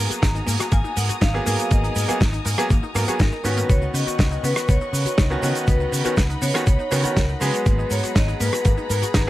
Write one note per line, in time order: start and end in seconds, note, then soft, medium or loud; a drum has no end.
0.00 1.31 F#3 medium
0.00 1.31 A#3 medium
0.00 1.31 B3 medium
0.00 3.65 F#4 medium
0.00 1.32 G#4 loud
0.00 3.65 G#5 medium
0.00 0.75 A#5 loud
0.00 3.65 A#5 medium
0.00 3.65 D#6 medium
0.10 0.22 F#4 medium
0.10 muted fingered electric bass stroke soft
0.10 closed hi-hat medium
0.10 shaker soft
0.12 shaker medium
0.22 0.40 G#1 medium
0.22 0.27 D#4 loud
0.22 kick loud
0.22 snare loud
0.22 closed hi-hat medium
0.22 shaker medium
0.35 0.43 D#4 medium
0.35 closed hi-hat soft
0.35 shaker soft
0.47 0.56 G#2 loud
0.47 0.56 A#3 loud
0.47 open hi-hat loud
0.47 shaker loud
0.47 shaker medium
0.60 0.68 F#4 medium
0.60 cross-stick medium
0.60 closed hi-hat medium
0.60 shaker soft
0.60 shaker medium
0.72 0.81 G#1 medium
0.72 0.84 A#3 loud
0.72 0.95 G#5 loud
0.72 kick loud
0.72 closed hi-hat medium
0.72 shaker soft
0.72 shaker medium
0.84 0.93 D#4 medium
0.84 shaker soft
0.97 1.09 G#2 loud
0.97 1.05 A#4 medium
0.97 1.08 F#5 medium
0.97 open hi-hat loud
0.97 shaker medium
0.97 shaker loud
1.09 1.21 F#4 medium
1.09 muted fingered electric bass stroke soft
1.09 closed hi-hat medium
1.09 shaker soft
1.09 shaker medium
1.21 1.39 G#1 medium
1.21 1.27 D#4 loud
1.21 1.68 F5 medium
1.21 kick loud
1.21 snare loud
1.21 closed hi-hat medium
1.21 shaker medium
1.34 1.42 F#3 medium
1.34 1.42 A#3 medium
1.34 1.42 B3 medium
1.34 1.42 D#4 medium
1.34 1.42 G#4 loud
1.34 shaker soft
1.45 1.55 G#2 medium
1.45 2.05 F#3 medium
1.45 2.05 A#3 medium
1.45 1.55 A#3 loud
1.45 2.05 B3 medium
1.45 2.06 G#4 loud
1.45 open hi-hat loud
1.45 shaker loud
1.45 shaker medium
1.59 1.67 F#4 medium
1.59 closed hi-hat medium
1.59 shaker medium
1.59 shaker soft
1.71 1.88 G#1 loud
1.71 1.83 A#3 loud
1.71 2.18 D#5 medium
1.71 kick loud
1.71 closed hi-hat medium
1.71 shaker soft
1.71 shaker medium
1.83 1.92 D#4 medium
1.83 closed hi-hat medium
1.83 shaker soft
1.95 2.05 G#2 loud
1.95 2.05 A#4 medium
1.95 open hi-hat loud
1.95 shaker loud
1.98 shaker medium
2.08 2.16 F#3 medium
2.08 2.16 A#3 medium
2.08 2.17 B3 medium
2.08 2.20 F#4 medium
2.08 2.17 G#4 loud
2.08 muted fingered electric bass stroke soft
2.08 closed hi-hat medium
2.08 shaker soft
2.08 shaker medium
2.21 2.38 G#1 medium
2.21 2.26 D#4 loud
2.21 kick loud
2.21 snare loud
2.21 closed hi-hat medium
2.21 shaker medium
2.33 2.42 D#4 medium
2.33 closed hi-hat medium
2.33 shaker soft
2.45 2.54 G#2 medium
2.45 2.54 A#3 loud
2.45 open hi-hat loud
2.45 shaker loud
2.45 shaker medium
2.58 2.66 F#3 loud
2.58 2.66 A#3 medium
2.58 2.66 B3 medium
2.58 2.66 F#4 medium
2.58 2.66 G#4 loud
2.58 cross-stick medium
2.58 closed hi-hat medium
2.58 shaker soft
2.58 shaker medium
2.70 2.79 G#1 medium
2.70 2.82 A#3 loud
2.70 kick loud
2.70 closed hi-hat medium
2.70 shaker medium
2.72 shaker soft
2.83 2.91 D#4 medium
2.83 shaker soft
2.95 3.04 G#2 loud
2.95 3.03 F#3 medium
2.95 3.03 A#3 medium
2.95 3.04 A#3 loud
2.95 3.03 B3 medium
2.95 3.04 A#4 medium
2.95 cross-stick medium
2.95 open hi-hat loud
2.95 shaker medium
3.07 3.20 F#3 medium
3.07 3.21 A#3 medium
3.07 3.21 B3 medium
3.07 3.16 F#4 loud
3.07 3.21 G#4 medium
3.07 muted fingered electric bass stroke soft
3.07 closed hi-hat medium
3.07 shaker soft
3.07 shaker medium
3.19 3.28 G#1 medium
3.19 3.31 D#4 loud
3.19 3.45 A#4 medium
3.19 kick loud
3.19 snare loud
3.19 closed hi-hat medium
3.19 shaker medium
3.19 shaker soft
3.32 3.41 D#4 medium
3.32 shaker soft
3.44 3.62 G#2 medium
3.44 5.27 D#3 medium
3.44 5.28 B3 medium
3.44 3.53 B3 medium
3.44 5.28 C#4 medium
3.44 5.28 F#4 loud
3.44 3.70 B4 medium
3.44 open hi-hat loud
3.44 shaker medium
3.57 3.69 A#3 loud
3.57 closed hi-hat medium
3.57 shaker soft
3.58 shaker medium
3.69 3.87 C#2 loud
3.69 3.81 B3 loud
3.69 7.62 B4 medium
3.69 3.81 C#5 loud
3.69 7.62 D#5 medium
3.69 9.30 F#5 medium
3.69 5.66 C#6 medium
3.69 kick loud
3.69 closed hi-hat medium
3.69 shaker medium
3.82 3.90 D#4 medium
3.82 shaker soft
3.94 4.03 C#3 loud
3.94 4.03 B4 medium
3.94 4.41 D#5 loud
3.94 open hi-hat loud
3.94 shaker medium
4.07 4.18 F#4 medium
4.07 muted fingered electric bass stroke soft
4.07 closed hi-hat medium
4.07 shaker soft
4.07 shaker medium
4.19 4.36 C#2 medium
4.19 4.24 D#4 loud
4.19 kick loud
4.19 snare loud
4.19 closed hi-hat medium
4.19 shaker soft
4.19 shaker medium
4.31 4.40 D#4 medium
4.31 closed hi-hat soft
4.31 shaker soft
4.43 4.52 C#3 loud
4.43 4.52 B3 loud
4.43 4.70 B4 loud
4.43 open hi-hat loud
4.43 shaker medium
4.56 4.65 F#4 medium
4.56 cross-stick medium
4.56 closed hi-hat medium
4.56 shaker soft
4.56 shaker medium
4.68 4.77 C#2 medium
4.68 4.81 B3 loud
4.68 5.45 C#5 loud
4.68 kick loud
4.68 closed hi-hat medium
4.68 shaker medium
4.70 shaker soft
4.81 4.90 D#4 medium
4.81 shaker soft
4.93 5.05 C#3 medium
4.93 5.02 B4 medium
4.93 open hi-hat loud
4.93 shaker medium
4.93 shaker loud
5.05 5.17 F#4 medium
5.05 muted fingered electric bass stroke soft
5.05 closed hi-hat medium
5.05 shaker soft
5.05 shaker medium
5.18 5.35 C#2 medium
5.18 5.23 D#4 loud
5.18 kick loud
5.18 snare loud
5.18 closed hi-hat medium
5.18 shaker medium
5.20 shaker medium
5.30 5.39 D#3 medium
5.30 5.39 B3 medium
5.30 5.39 C#4 medium
5.30 5.39 D#4 medium
5.30 5.39 F#4 loud
5.30 shaker soft
5.42 5.51 C#3 medium
5.42 6.02 D#3 medium
5.42 6.02 B3 medium
5.42 5.51 B3 loud
5.42 6.02 C#4 medium
5.42 6.03 F#4 loud
5.42 5.69 D#5 loud
5.42 open hi-hat loud
5.42 shaker loud
5.42 shaker medium
5.55 5.64 F#4 medium
5.55 closed hi-hat medium
5.55 shaker soft
5.57 shaker medium
5.67 5.85 C#2 loud
5.67 5.80 B3 loud
5.67 6.14 B4 medium
5.67 7.64 B5 medium
5.67 kick loud
5.67 closed hi-hat medium
5.67 shaker medium
5.69 shaker medium
5.80 5.89 D#4 medium
5.80 shaker soft
5.92 6.01 C#3 loud
5.92 6.01 B4 medium
5.92 open hi-hat loud
5.92 shaker medium
6.05 6.13 D#3 medium
6.05 6.13 B3 medium
6.05 6.13 C#4 medium
6.05 6.17 F#4 medium
6.05 6.13 F#4 medium
6.05 muted fingered electric bass stroke soft
6.05 closed hi-hat medium
6.05 shaker soft
6.05 shaker medium
6.17 6.34 C#2 medium
6.17 6.22 D#4 loud
6.17 kick loud
6.17 snare loud
6.17 closed hi-hat medium
6.17 shaker medium
6.19 shaker medium
6.29 6.38 D#4 medium
6.29 closed hi-hat soft
6.29 shaker soft
6.42 6.51 C#3 loud
6.42 6.51 B3 loud
6.42 7.19 C#5 loud
6.42 open hi-hat loud
6.42 shaker medium
6.54 6.62 D#3 loud
6.54 6.62 B3 medium
6.54 6.63 C#4 medium
6.54 6.63 F#4 medium
6.54 6.63 F#4 loud
6.54 cross-stick medium
6.54 closed hi-hat medium
6.54 shaker soft
6.54 shaker medium
6.66 6.76 C#2 medium
6.66 6.79 B3 loud
6.66 kick loud
6.66 closed hi-hat medium
6.66 shaker medium
6.68 shaker medium
6.79 6.88 D#4 medium
6.79 shaker soft
6.91 7.04 C#3 loud
6.91 7.01 D#3 medium
6.91 7.01 B3 medium
6.91 7.01 C#4 medium
6.91 7.01 F#4 loud
6.91 7.00 B4 medium
6.91 cross-stick medium
6.91 open hi-hat loud
6.91 shaker medium
7.03 7.17 D#3 medium
7.03 7.17 B3 medium
7.03 7.17 C#4 medium
7.03 7.16 F#4 medium
7.03 7.17 F#4 medium
7.03 muted fingered electric bass stroke soft
7.03 closed hi-hat medium
7.03 shaker soft
7.03 shaker medium
7.16 7.34 C#2 medium
7.16 7.22 D#4 loud
7.16 7.42 A#4 loud
7.16 kick loud
7.16 snare loud
7.16 closed hi-hat medium
7.16 shaker medium
7.16 shaker soft
7.29 7.37 D#4 medium
7.29 shaker soft
7.40 7.50 C#3 medium
7.40 9.24 F#3 medium
7.40 9.24 G#3 medium
7.40 9.24 B3 medium
7.40 7.50 B3 loud
7.40 9.25 G#4 loud
7.40 7.88 B4 loud
7.40 open hi-hat loud
7.40 shaker loud
7.40 shaker medium
7.54 7.62 F#4 medium
7.54 closed hi-hat medium
7.54 shaker soft
7.54 shaker medium
7.66 7.83 G#1 loud
7.66 7.78 A#3 loud
7.66 9.30 G#4 medium
7.66 9.30 A#5 medium
7.66 9.30 B5 medium
7.66 kick loud
7.66 closed hi-hat medium
7.66 shaker medium
7.66 shaker soft
7.78 7.87 D#4 medium
7.78 shaker soft
7.90 7.99 G#2 loud
7.90 7.99 A#4 medium
7.90 8.17 C#5 loud
7.90 open hi-hat loud
7.90 shaker medium
8.03 8.15 F#4 medium
8.03 muted fingered electric bass stroke soft
8.03 closed hi-hat medium
8.03 shaker soft
8.03 shaker medium
8.15 8.33 G#1 medium
8.15 8.21 D#4 loud
8.15 8.42 D#5 loud
8.15 kick loud
8.15 snare loud
8.15 closed hi-hat medium
8.15 shaker medium
8.28 8.37 D#4 medium
8.28 closed hi-hat soft
8.28 shaker soft
8.40 8.49 G#2 loud
8.40 8.49 A#3 loud
8.40 9.30 B4 loud
8.40 open hi-hat loud
8.40 shaker medium
8.53 8.61 F#4 medium
8.53 cross-stick medium
8.53 closed hi-hat medium
8.53 shaker soft
8.53 shaker medium
8.65 8.74 G#1 medium
8.65 8.77 A#3 loud
8.65 kick loud
8.65 closed hi-hat medium
8.65 shaker medium
8.78 8.86 D#4 medium
8.78 shaker soft
8.90 9.02 G#2 loud
8.90 8.98 A#4 medium
8.90 open hi-hat loud
8.90 shaker medium
9.02 9.14 F#4 medium
9.02 muted fingered electric bass stroke soft
9.02 closed hi-hat medium
9.02 shaker soft
9.02 shaker medium
9.14 9.30 G#1 medium
9.14 9.20 D#4 loud
9.14 kick loud
9.14 snare loud
9.14 closed hi-hat medium
9.14 shaker soft